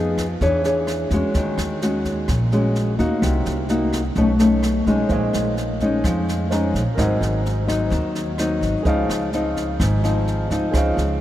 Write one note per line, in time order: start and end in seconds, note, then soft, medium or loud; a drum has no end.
0.00 0.38 F2 medium
0.00 0.39 F3 medium
0.00 0.26 B3 medium
0.00 0.26 D#4 medium
0.00 0.26 G#4 medium
0.18 kick soft
0.18 cross-stick medium
0.18 snare soft
0.41 1.07 E2 medium
0.41 1.33 E3 medium
0.41 0.61 D4 medium
0.41 0.61 G#4 soft
0.41 0.61 C#5 medium
0.41 kick medium
0.41 snare soft
0.64 1.08 D4 medium
0.64 1.08 G#4 medium
0.64 1.08 C#5 medium
0.64 snare soft
0.87 cross-stick soft
0.87 snare soft
1.10 1.22 E2 medium
1.10 1.79 G#3 medium
1.10 1.79 C#4 medium
1.10 1.79 F#4 medium
1.10 kick soft
1.10 snare soft
1.34 1.56 D#2 medium
1.34 2.27 D#3 medium
1.34 kick soft
1.34 snare soft
1.58 2.24 D#2 medium
1.58 cross-stick medium
1.58 snare soft
1.82 2.28 G#3 medium
1.82 2.29 C#4 medium
1.82 2.29 F#4 medium
1.82 snare soft
2.05 kick soft
2.05 snare soft
2.28 2.95 A#1 medium
2.28 3.20 A#2 medium
2.28 kick medium
2.28 cross-stick medium
2.28 snare soft
2.52 2.96 G#3 medium
2.52 2.96 C#4 soft
2.52 2.96 F#4 medium
2.52 snare soft
2.75 snare soft
2.99 3.10 D#2 medium
2.99 3.66 A#3 medium
2.99 3.66 D#4 medium
2.99 3.66 F#4 medium
2.99 kick soft
2.99 snare soft
3.22 3.44 C2 medium
3.22 4.14 C3 medium
3.22 kick medium
3.22 cross-stick soft
3.22 snare soft
3.45 4.12 C2 medium
3.45 snare soft
3.69 4.01 A#3 medium
3.69 4.01 D#4 medium
3.69 4.02 F#4 medium
3.69 snare soft
3.93 kick soft
3.93 cross-stick soft
3.93 snare soft
4.15 4.83 B1 medium
4.15 5.08 B2 medium
4.15 4.31 A3 medium
4.15 4.31 C#4 soft
4.15 4.31 D#4 medium
4.15 kick soft
4.15 snare soft
4.39 4.83 A3 medium
4.39 4.83 C#4 soft
4.39 4.84 D#4 medium
4.39 snare soft
4.63 cross-stick medium
4.63 snare soft
4.86 4.98 B1 medium
4.86 5.54 G#3 medium
4.86 5.54 C#4 medium
4.86 5.54 D#4 medium
4.86 kick soft
4.86 snare soft
5.08 5.32 A#1 medium
5.08 6.02 A#2 medium
5.08 6.47 C5 soft
5.08 6.48 C#5 soft
5.08 kick soft
5.08 snare soft
5.12 6.49 D#5 soft
5.12 6.50 G#5 medium
5.33 6.00 A#1 medium
5.33 cross-stick soft
5.33 snare soft
5.57 snare soft
5.80 6.48 G#3 medium
5.80 6.48 C#4 medium
5.80 6.48 D#4 medium
5.80 kick soft
5.80 snare soft
6.04 6.71 F2 loud
6.04 6.96 F3 soft
6.04 kick medium
6.04 cross-stick medium
6.04 snare soft
6.28 snare soft
6.49 6.81 G#3 medium
6.49 6.81 C#4 medium
6.49 6.82 D#4 medium
6.49 6.95 C5 soft
6.49 6.98 C#5 soft
6.49 6.97 D#5 soft
6.49 6.99 A#5 soft
6.49 snare soft
6.74 6.85 A#1 medium
6.74 kick soft
6.74 snare soft
6.94 7.20 G#1 medium
6.94 7.90 G#2 medium
6.94 7.65 F#3 soft
6.94 7.65 C4 medium
6.94 8.80 A#4 medium
6.94 8.81 C5 soft
6.94 kick soft
6.94 cross-stick medium
6.94 snare soft
6.99 7.65 D#4 medium
6.99 8.83 D#5 soft
6.99 8.84 F#5 medium
7.21 7.88 G#1 medium
7.21 snare soft
7.46 snare soft
7.67 8.35 F#3 medium
7.67 8.35 C4 medium
7.67 8.35 D#4 medium
7.67 kick soft
7.67 cross-stick medium
7.67 snare soft
7.90 8.58 D#2 medium
7.90 8.83 D#3 soft
7.90 kick soft
7.90 snare soft
8.15 snare soft
8.38 8.82 F#3 medium
8.38 8.82 C4 medium
8.38 8.83 D#4 medium
8.38 cross-stick medium
8.38 snare soft
8.61 8.73 G#1 medium
8.61 kick soft
8.61 snare soft
8.83 9.08 C#2 medium
8.83 9.78 C#3 medium
8.83 9.29 F3 medium
8.83 9.30 C4 soft
8.83 10.68 G#4 medium
8.83 10.69 C5 soft
8.83 10.70 D#5 soft
8.83 kick medium
8.83 snare soft
8.87 9.30 D#4 medium
8.87 10.71 F5 medium
9.09 9.76 C#2 medium
9.09 cross-stick medium
9.09 snare soft
9.33 10.00 F3 medium
9.33 10.00 C4 medium
9.33 10.00 D#4 medium
9.33 snare soft
9.56 kick soft
9.56 snare soft
9.80 10.46 G#1 medium
9.80 10.71 G#2 medium
9.80 kick medium
9.80 cross-stick medium
9.80 snare soft
10.03 10.47 F3 medium
10.03 10.47 C4 medium
10.03 10.47 D#4 medium
10.03 snare soft
10.28 snare soft
10.50 10.61 C#2 medium
10.50 11.18 F3 medium
10.50 11.18 C4 medium
10.50 11.18 D#4 medium
10.50 kick soft
10.50 snare soft
10.71 10.96 C#2 medium
10.71 11.21 C#3 medium
10.71 11.21 G#4 medium
10.71 11.21 C5 soft
10.71 11.21 D#5 soft
10.71 kick medium
10.71 cross-stick medium
10.71 snare soft
10.77 11.21 F5 medium
10.97 11.21 C#2 medium
10.97 snare soft